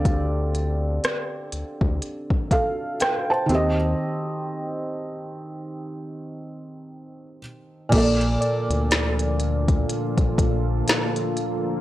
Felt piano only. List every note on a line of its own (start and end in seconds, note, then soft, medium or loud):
0.00 2.94 D3 medium
0.00 2.96 C4 medium
0.00 2.97 G4 medium
0.00 2.53 A4 medium
0.00 2.50 D5 medium
0.00 2.52 F5 medium
2.52 2.99 A4 medium
2.52 2.98 F5 medium
3.01 3.28 G5 medium
3.30 3.76 C5 medium
3.30 3.76 A5 medium
3.46 7.37 D#3 medium
3.46 7.39 C4 medium
3.52 7.40 G4 medium
3.52 7.42 D#5 medium
7.89 11.80 A#2 medium
7.89 11.81 A#3 medium
7.95 11.81 A4 medium
7.95 11.81 D5 medium